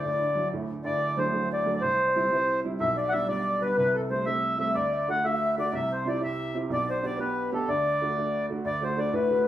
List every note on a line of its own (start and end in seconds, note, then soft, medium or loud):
0.00 0.81 D1 medium
0.00 0.82 D2 medium
0.00 0.48 D5 medium
0.00 0.53 D5 medium
0.05 0.20 A2 soft
0.20 0.35 D3 medium
0.35 0.52 F#3 medium
0.53 0.68 A2 medium
0.69 0.84 D3 medium
0.83 1.78 D1 medium
0.83 1.80 D2 medium
0.83 1.10 D5 medium
0.83 1.19 D5 loud
1.10 1.19 D5 medium
1.17 1.31 F#3 medium
1.17 1.32 A3 soft
1.17 1.32 D4 medium
1.17 1.53 C5 medium
1.17 1.49 C5 medium
1.33 1.64 F#3 soft
1.33 1.65 A3 soft
1.33 1.65 D4 medium
1.52 1.76 D5 medium
1.52 1.74 D5 medium
1.66 1.82 F#3 medium
1.66 1.82 A3 soft
1.66 1.82 D4 medium
1.76 1.82 D5 medium
1.81 2.77 C2 medium
1.81 2.60 C5 loud
1.81 2.09 C5 medium
2.07 2.37 C5 medium
2.07 2.13 D5 medium
2.15 2.29 G3 medium
2.15 2.29 C4 medium
2.15 2.29 E4 medium
2.30 2.63 G3 medium
2.30 2.63 C4 soft
2.30 2.63 E4 medium
2.35 2.40 B4 medium
2.35 2.65 C5 medium
2.65 2.80 G3 medium
2.65 2.80 C4 soft
2.65 2.80 E4 medium
2.80 3.74 B1 medium
2.80 3.75 B2 medium
2.80 2.97 E5 loud
2.80 3.01 E5 medium
2.98 3.10 D5 medium
2.98 3.30 D5 loud
3.09 3.27 E5 loud
3.09 3.13 F#5 medium
3.13 3.27 G3 medium
3.13 3.28 B3 soft
3.13 3.28 D4 medium
3.28 3.60 G3 medium
3.28 3.61 B3 soft
3.28 3.61 D4 soft
3.28 3.63 D5 loud
3.28 3.64 D5 medium
3.62 3.77 G3 medium
3.62 3.77 B3 soft
3.62 3.77 D4 medium
3.62 3.76 B4 medium
3.62 3.78 B4 medium
3.77 4.72 C2 medium
3.77 4.72 C3 medium
3.77 3.96 B4 loud
3.77 3.98 B4 medium
3.94 4.02 A4 medium
3.94 4.12 A4 medium
4.10 4.24 G3 soft
4.10 4.25 A3 soft
4.10 4.25 C4 medium
4.10 4.25 C5 medium
4.10 4.29 C5 medium
4.26 4.57 G3 soft
4.26 4.57 A3 soft
4.26 4.58 C4 soft
4.26 4.58 E5 loud
4.26 4.59 E5 medium
4.58 4.74 G3 medium
4.58 4.75 A3 medium
4.58 4.75 C4 medium
4.58 4.78 E5 medium
4.58 4.76 E5 loud
4.75 5.69 D2 medium
4.75 5.70 D3 medium
4.75 5.09 D5 loud
4.75 4.95 D5 medium
4.93 5.10 E5 medium
5.08 5.22 A3 medium
5.08 5.23 D4 medium
5.08 5.23 F#4 medium
5.08 5.23 F#5 medium
5.08 5.26 F#5 loud
5.24 5.56 A3 soft
5.24 5.56 D4 soft
5.24 5.56 F#4 medium
5.24 5.55 E5 loud
5.57 5.73 A3 soft
5.57 5.73 D4 medium
5.57 5.73 F#4 medium
5.57 5.74 D5 medium
5.57 5.74 D5 loud
5.72 6.67 C2 medium
5.72 6.68 C3 medium
5.72 6.06 E5 medium
5.72 5.92 E5 loud
5.92 6.08 C5 medium
6.05 6.19 C4 soft
6.05 6.20 E4 medium
6.05 6.20 G4 medium
6.05 6.20 D5 medium
6.05 6.22 D5 loud
6.21 6.53 C4 soft
6.21 6.54 E4 soft
6.21 6.54 G4 medium
6.21 6.56 E5 loud
6.21 6.57 E5 loud
6.55 6.70 C4 medium
6.55 6.70 E4 medium
6.55 6.70 G4 medium
6.70 7.64 B1 medium
6.70 7.65 B2 medium
6.70 7.01 D5 medium
6.70 6.90 D5 loud
6.90 7.05 C5 medium
7.02 7.17 B3 medium
7.02 7.18 D4 medium
7.02 7.18 G4 medium
7.02 7.19 D5 medium
7.17 7.51 B3 medium
7.17 7.51 D4 soft
7.17 7.51 G4 medium
7.17 7.51 B4 medium
7.17 7.50 B4 medium
7.52 7.67 B3 medium
7.52 7.68 D4 medium
7.52 7.68 G4 medium
7.52 7.69 A4 loud
7.67 8.61 D2 medium
7.67 8.62 D3 medium
7.67 8.45 D5 medium
7.67 8.46 D5 loud
8.01 8.16 A3 soft
8.01 8.17 D4 soft
8.01 8.17 F#4 medium
8.17 8.48 A3 soft
8.17 8.49 D4 soft
8.17 8.49 F#4 soft
8.49 8.65 A3 soft
8.49 8.65 D4 medium
8.49 8.65 F#4 medium
8.64 9.48 D2 medium
8.64 8.97 D3 medium
8.64 8.86 D5 medium
8.64 8.84 D5 loud
8.81 8.95 A3 soft
8.81 8.96 D4 soft
8.81 8.96 F#4 medium
8.81 8.97 C5 medium
8.81 8.99 C5 medium
8.97 9.24 A3 medium
8.97 9.24 D4 medium
8.97 9.24 F#4 medium
8.97 9.13 D5 medium
8.97 9.14 D5 medium
9.13 9.46 A2 medium
9.13 9.44 B4 medium
9.13 9.48 B4 medium
9.30 9.45 A3 medium
9.30 9.45 D4 soft
9.30 9.46 F#4 medium